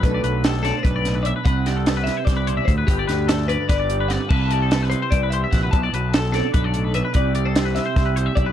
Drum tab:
CC |-------|-------|-------|x------|
HH |xxxxxxx|xxxxxxx|xxxxxxx|-xxxxxx|
SD |--oo-o-|-oooo--|-oo-o-o|--o---o|
BD |o---o--|o---o-o|o---o--|o---o-o|

CC |-------|-------|
HH |xxxxxxx|xxxxxxx|
SD |--oo---|--ooo--|
BD |o---o--|o---o-o|